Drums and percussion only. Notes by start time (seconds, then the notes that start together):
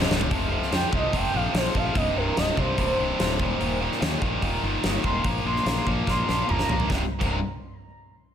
0.02 snare
0.11 snare
0.21 floor tom
0.31 kick, open hi-hat
0.63 snare
0.72 snare, open hi-hat
0.93 kick
1.13 kick, open hi-hat
1.54 snare, open hi-hat
1.75 kick
1.95 kick, open hi-hat
2.37 snare, open hi-hat
2.57 kick
2.78 kick, open hi-hat
3.20 snare, open hi-hat
3.40 kick
3.61 open hi-hat
3.92 snare
4.02 snare, open hi-hat
4.22 kick
4.42 kick, open hi-hat
4.83 snare, open hi-hat
5.04 kick
5.24 kick, open hi-hat
5.56 snare
5.66 snare, open hi-hat
5.87 kick
6.07 kick, snare
6.29 snare
6.49 mid tom
6.59 snare
6.69 floor tom
6.80 floor tom
6.90 kick, snare
7.21 kick, crash